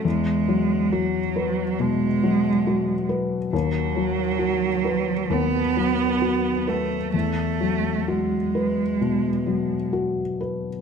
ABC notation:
X:1
M:4/4
L:1/8
Q:1/4=66
K:Emix
V:1 name="Felt piano"
E,, F, F B B,, F, F B | ^D,, F, F B D,, F, F B | E,, F, F B B,, F, F B |]
V:2 name="Cello" clef=bass
G,2 F,2 G,3 z | F,4 B,3 A, | A,2 G,4 z2 |]